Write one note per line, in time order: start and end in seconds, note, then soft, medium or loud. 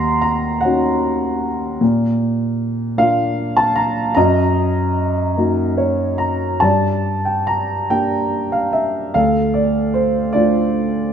0.00 1.78 D#2 medium
0.00 0.59 F#5 medium
0.00 0.20 A#5 medium
0.00 1.83 C6 medium
0.22 0.60 A#5 medium
0.61 1.78 C#4 soft
0.61 1.47 F#5 medium
0.65 1.78 D#4 soft
0.65 1.78 F#4 medium
1.81 4.12 A#2 medium
2.98 4.12 A#3 medium
2.98 4.13 D4 soft
2.98 4.13 F4 soft
2.98 3.59 F5 medium
3.57 3.77 A5 medium
3.76 4.13 A#5 medium
4.15 6.59 F#2 medium
4.15 6.16 D#5 medium
4.15 6.15 A#5 medium
5.37 6.59 A#3 soft
5.37 6.59 D#4 soft
5.37 6.59 F#4 soft
5.77 6.58 C#5 medium
6.18 6.63 A#5 medium
6.60 9.11 G2 medium
6.60 7.87 D5 medium
6.60 7.28 A5 medium
7.25 7.46 G5 medium
7.47 7.92 A#5 medium
7.90 9.11 A#3 soft
7.90 9.11 D4 soft
7.90 9.11 G4 soft
7.90 8.55 G5 medium
8.52 8.74 F5 medium
8.73 9.16 E5 medium
9.14 11.13 D2 medium
9.14 10.31 A4 medium
9.14 9.56 F5 medium
9.54 9.96 D5 medium
9.94 10.36 C5 medium
10.33 11.13 A3 soft
10.33 11.13 D4 soft
10.33 11.13 F4 soft
10.33 11.09 D5 medium